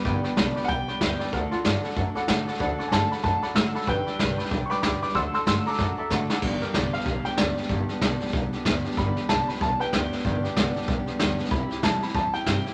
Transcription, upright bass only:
X:1
M:4/4
L:1/8
Q:"Swing" 1/4=188
K:G
V:1 name="Upright bass" clef=bass
G,,, z C,, z B,,, z D,, z | D,, z G,, z F,, z A,, z | D,, z G,, z F,, z A,, z | G,,, z C,, z B,,, z ^C,, z |
D,, z G,, z F,, z A,, z | G,,, z C,, z B,,, z D,, z | G,,, z C,, z B,,, z D,, z | G,,, z C,, z B,,, z D,, z |
G,,, z C,, z B,,, z D,, z | C,, z E,, z E,, z G,, z |]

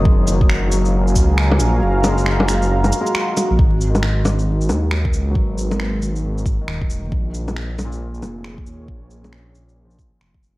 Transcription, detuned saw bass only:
X:1
M:4/4
L:1/16
Q:"Swing 16ths" 1/4=136
K:G#dor
V:1 name="Detuned saw bass" clef=bass
F,,,6 F,,,4 C,,4 A,,,2 | F,,,6 F,,,4 z4 z A,,, | G,,,6 G,,,4 D,,4 C,,2 | G,,,6 G,,,4 G,,, z D,,,2 D,,, F,,, |
A,,,6 A,,,4 E,,,4 D,,2 | A,,,6 A,,,4 A,,, z E,,,2 E,,, z |]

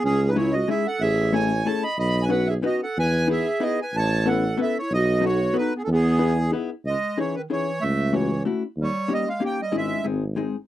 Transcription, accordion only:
X:1
M:3/4
L:1/16
Q:1/4=186
K:E
V:1 name="Accordion"
G3 B c2 d2 e2 f2 | e4 g4 a2 b2 | b3 g f2 e2 d2 f2 | g4 e4 d2 g2 |
a4 f4 e2 c2 | d4 c4 B2 G A | G8 z4 | [K:C#m] d4 c2 B2 c4 |
e4 c4 z4 | c4 d2 ^e2 =g2 d2 | e4 z8 |]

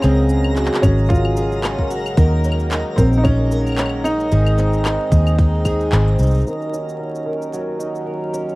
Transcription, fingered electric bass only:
X:1
M:4/4
L:1/8
Q:"Swing 16ths" 1/4=112
K:Ebdor
V:1 name="Fingered electric bass" clef=bass
D,,2 z A,,,4- A,,, | E,,2 z B,,,4- B,,, | A,,,2 z E,,3 A,,, C,, | z8 |]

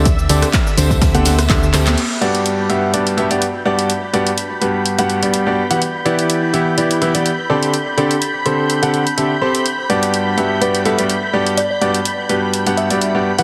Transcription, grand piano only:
X:1
M:4/4
L:1/16
Q:"Swing 16ths" 1/4=125
K:G
V:1 name="Grand piano"
z2 [D,CGAd] z3 [D,CGAc]3 [D,CGAf]2 z [D,CGAe] z [CGAc]2 | z2 [G,,B,FGd]4 [G,,B,FGe]2 [G,,B,FGd]2 [G,,B,FGe] [G,,B,FGd] z2 [G,,B,FGd]2 | z2 [G,,B,FGd] z3 [G,,B,FGB]3 [G,,B,FGf]2 [G,,B,FGd]2 [G,,B,FGd] z [E,B,FGf] | z2 [E,B,EGd]4 [E,B,EGe]2 [E,B,EGd]2 [E,B,EGe] [E,B,EGd] z2 [D,CGAd]2 |
z2 [D,CGAd] z3 [D,CGAc]3 [D,CGAf]2 z [D,CGAe] z [CGAc]2 | z2 [G,,B,FGd]4 [G,,B,FGe]2 [G,,B,FGd]2 [G,,B,FGe] [G,,B,FGd] z2 [G,,B,FGd]2 | z2 [G,,B,FGd] z3 [G,,B,FGB]3 [G,,B,FGf]2 [G,,B,FGd]2 [G,,B,FGd] z [E,B,FGf] |]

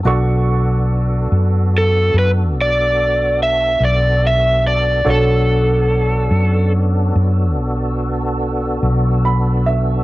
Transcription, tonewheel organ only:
X:1
M:12/8
L:1/8
Q:3/8=48
K:Bm
V:1 name="Tonewheel organ"
[B,DFA]12 | [B,DFA]12 |]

